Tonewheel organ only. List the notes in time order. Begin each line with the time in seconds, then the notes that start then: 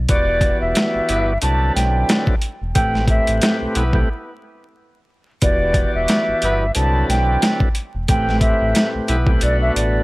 0.09 E3 B3 F#4 G4 D5
1.42 D3 F#3 C4 E4 B4 D5
2.75 A2 A3 C4 G4 B4
3.94 A2 A3 C4 G4 B4
5.42 E3 B3 F#4 G4 D5
6.75 D3 F#3 C4 E4 B4 D5
8.08 A2 A3 C4 G4 B4
9.28 A2 A3 C4 G4 B4
9.42 B2 A3 D4 F#4 B4